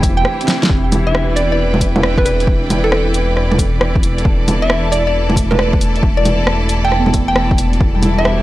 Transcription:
0.00 0.25 E1 medium
0.00 8.43 E3 medium
0.00 0.71 A3 medium
0.00 7.81 E4 medium
0.00 0.71 G4 medium
0.00 1.52 G4 medium
0.00 0.69 C5 medium
0.00 0.70 G5 medium
0.00 kick loud
0.00 closed hi-hat medium
0.00 cabasa medium
0.17 0.69 G5 medium
0.25 cross-stick loud
0.41 0.88 C4 medium
0.41 closed hi-hat soft
0.48 snare medium
0.48 closed hi-hat medium
0.48 cabasa medium
0.63 snare loud
0.63 closed hi-hat soft
0.69 7.79 E1 medium
0.69 kick loud
0.92 closed hi-hat medium
0.92 low bongo medium
0.92 cabasa medium
1.07 1.68 D4 medium
1.07 4.43 B4 medium
1.07 1.30 E5 medium
1.15 cross-stick loud
1.29 8.43 D5 medium
1.34 1.46 D5 medium
1.34 4.36 G5 medium
1.34 closed hi-hat medium
1.34 cabasa medium
1.52 1.56 D5 medium
1.74 low bongo medium
1.81 kick medium
1.81 closed hi-hat medium
1.81 cabasa medium
1.96 low bongo medium
2.03 cross-stick loud
2.18 2.23 B4 medium
2.18 kick loud
2.25 2.35 B4 medium
2.25 closed hi-hat medium
2.25 cabasa medium
2.40 closed hi-hat soft
2.47 kick loud
2.70 closed hi-hat medium
2.70 low bongo medium
2.70 cabasa medium
2.84 3.29 A4 medium
2.92 cross-stick loud
3.14 closed hi-hat medium
3.14 cabasa medium
3.37 cross-stick medium
3.52 low bongo medium
3.58 kick medium
3.58 closed hi-hat medium
3.58 cabasa medium
3.81 cross-stick loud
3.96 kick loud
4.03 closed hi-hat medium
4.03 cabasa medium
4.18 8.43 A5 medium
4.18 closed hi-hat soft
4.25 8.43 A4 medium
4.25 kick loud
4.48 closed hi-hat medium
4.48 low bongo medium
4.48 cabasa medium
4.62 4.85 E5 medium
4.70 cross-stick loud
4.92 5.01 D5 medium
4.92 closed hi-hat medium
4.92 cabasa medium
5.07 5.12 D5 medium
5.30 5.90 A3 medium
5.30 low bongo medium
5.36 kick medium
5.36 closed hi-hat medium
5.36 cabasa medium
5.51 5.74 B4 medium
5.51 low bongo medium
5.59 cross-stick loud
5.73 kick loud
5.81 closed hi-hat medium
5.81 cabasa medium
5.96 closed hi-hat soft
6.03 kick loud
6.17 6.47 D5 medium
6.25 closed hi-hat medium
6.25 low bongo medium
6.25 cabasa medium
6.47 cross-stick loud
6.69 closed hi-hat medium
6.69 cabasa medium
6.85 7.14 G5 medium
6.92 cross-stick medium
7.00 7.54 B3 medium
7.06 low bongo medium
7.14 kick medium
7.14 closed hi-hat medium
7.14 cabasa medium
7.28 7.86 G5 medium
7.36 cross-stick loud
7.51 kick loud
7.58 closed hi-hat medium
7.58 cabasa medium
7.73 closed hi-hat soft
7.80 8.43 E1 medium
7.80 kick loud
7.95 8.43 G3 medium
7.95 8.43 E4 medium
8.03 closed hi-hat medium
8.03 low bongo medium
8.03 cabasa medium
8.19 8.43 G4 medium
8.19 8.41 E5 medium
8.25 8.43 C5 medium
8.25 cross-stick loud

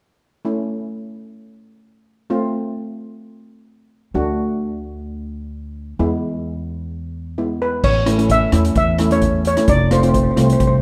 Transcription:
0.45 2.26 A3 medium
0.45 2.26 C#4 soft
0.45 2.26 E4 medium
2.30 4.11 A3 medium
2.30 4.11 C4 medium
2.30 4.11 F4 medium
4.14 5.96 D2 medium
4.14 5.96 A3 medium
4.14 5.96 D4 medium
4.14 5.96 F#4 medium
5.99 7.80 E2 medium
5.99 7.35 G#3 medium
5.99 7.35 B3 medium
5.99 7.35 E4 medium
7.38 7.84 G#3 soft
7.38 7.84 B3 soft
7.38 7.84 E4 medium
7.62 7.85 B4 medium
7.84 8.43 A1 medium
7.84 8.27 C#5 medium
7.84 kick loud
7.84 crash medium
8.06 8.14 A3 medium
8.06 8.14 C#4 medium
8.06 8.14 E4 medium
8.06 cross-stick medium
8.06 closed hi-hat medium
8.18 8.40 A3 medium
8.18 8.39 C#4 medium
8.18 8.39 E4 medium
8.18 closed hi-hat medium
8.30 8.76 E5 medium
8.30 kick medium
8.30 closed hi-hat medium
8.52 8.72 E2 medium
8.52 8.81 A3 medium
8.52 8.81 C#4 medium
8.52 8.81 E4 medium
8.52 cross-stick medium
8.52 closed hi-hat medium
8.65 closed hi-hat medium
8.75 9.55 E2 medium
8.75 9.13 E5 medium
8.75 kick medium
8.75 closed hi-hat soft
8.98 9.06 A3 medium
8.98 9.07 C#4 medium
8.98 9.07 E4 medium
8.98 cross-stick medium
8.98 closed hi-hat medium
9.11 9.38 A3 medium
9.11 9.38 C#4 medium
9.11 9.38 E4 medium
9.11 9.46 C#5 medium
9.11 closed hi-hat medium
9.22 kick medium
9.22 closed hi-hat medium
9.45 9.70 C#5 medium
9.45 closed hi-hat medium
9.57 9.68 A3 medium
9.57 9.68 C#4 medium
9.57 9.68 E4 medium
9.57 cross-stick medium
9.57 closed hi-hat medium
9.68 10.27 F1 medium
9.68 9.93 D5 medium
9.68 kick loud
9.68 closed hi-hat medium
9.91 9.98 A3 medium
9.91 9.99 C4 medium
9.91 9.99 F4 medium
9.91 9.99 C5 medium
9.91 cross-stick medium
9.91 closed hi-hat medium
10.00 10.24 A3 medium
10.00 10.24 C4 medium
10.00 10.24 F4 medium
10.00 10.07 C5 soft
10.00 closed hi-hat soft
10.09 10.14 C5 soft
10.14 10.22 C5 soft
10.14 kick medium
10.14 closed hi-hat medium
10.23 10.30 C5 soft
10.31 10.37 C5 soft
10.37 10.57 C2 medium
10.37 10.65 A3 medium
10.37 10.65 C4 medium
10.37 10.65 F4 medium
10.37 10.45 C5 soft
10.37 cross-stick medium
10.37 closed hi-hat medium
10.46 10.51 C5 soft
10.46 closed hi-hat medium
10.53 10.59 C5 medium
10.60 10.82 C2 medium
10.60 10.66 C5 soft
10.60 kick medium
10.60 closed hi-hat soft
10.67 10.74 C5 medium

